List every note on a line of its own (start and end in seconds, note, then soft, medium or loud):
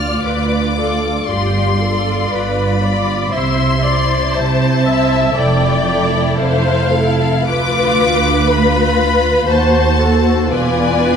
0.00 0.13 D2 soft
0.00 0.76 F4 soft
0.00 0.22 D5 soft
0.00 0.76 D5 soft
0.00 0.21 F6 medium
0.25 1.17 D2 soft
0.25 0.76 B4 soft
0.25 1.29 D6 medium
0.77 1.26 F4 soft
0.77 1.29 A4 soft
0.77 1.26 D5 soft
1.27 2.20 G1 soft
1.27 2.19 G2 soft
1.27 1.78 F4 soft
1.27 1.81 G4 soft
1.27 1.78 D5 soft
1.27 2.32 C6 medium
1.79 2.80 F4 soft
1.79 2.32 A4 soft
1.79 2.80 D5 soft
2.31 3.21 G1 soft
2.31 3.21 G2 soft
2.31 2.81 B4 soft
2.31 3.33 B5 medium
2.81 3.31 F4 soft
2.81 3.32 D5 soft
3.32 4.24 C2 medium
3.32 4.23 C3 medium
3.32 3.82 E4 soft
3.32 3.82 C5 soft
3.32 3.84 E5 soft
3.32 4.33 C6 medium
3.83 4.84 E4 soft
3.83 4.84 C5 soft
3.83 4.36 D5 soft
4.35 5.26 C2 medium
4.35 5.26 C3 medium
4.35 4.87 C5 medium
4.35 5.37 A5 medium
4.86 5.35 E4 soft
4.86 5.36 C5 soft
4.86 5.37 E5 medium
5.36 6.28 F1 medium
5.36 6.27 F2 medium
5.36 5.87 E4 soft
5.36 5.87 A4 soft
5.36 6.40 D5 medium
5.36 6.40 G5 medium
5.88 6.92 E4 soft
5.88 6.92 A4 medium
6.39 7.36 F1 medium
6.39 7.36 F2 medium
6.39 6.94 C5 medium
6.39 7.49 F5 medium
6.93 7.48 E4 soft
6.93 7.48 A4 medium
6.93 7.48 A4 soft
7.48 9.45 D2 medium
7.48 8.47 F4 medium
7.48 9.45 B4 medium
7.48 8.47 B4 medium
7.48 8.48 D6 medium
8.50 9.47 F4 medium
8.50 9.47 B4 medium
8.50 9.49 B5 medium
9.49 10.49 D#2 medium
9.49 10.50 D#2 medium
9.49 10.50 F#4 medium
9.49 9.99 C5 medium
9.49 10.50 C5 medium
9.49 10.51 A5 medium
9.99 10.51 A4 medium
10.51 11.17 E1 medium
10.51 11.17 E2 medium
10.51 11.17 F4 soft
10.51 11.17 B4 medium
10.51 11.17 D5 soft
10.51 11.17 G#5 medium